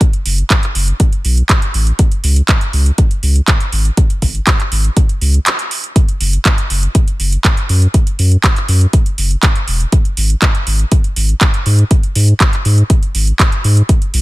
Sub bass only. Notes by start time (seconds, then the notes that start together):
0.26 F#1
0.75 F#1
1.25 B1
1.74 A1
2.24 C#2
2.73 C#2
3.23 C#2
3.73 G#1
4.22 G#1
4.72 G#1
5.21 C#2
6.21 F#1
6.70 F#1
7.20 F#1
7.69 F#2
8.19 F#2
8.69 F#2
9.18 F#1
9.68 E1
10.17 G#1
10.67 G#1
11.17 G#1
11.66 G#2
12.16 G#2
12.65 G#2
13.15 G#1
13.64 G#2
14.14 B1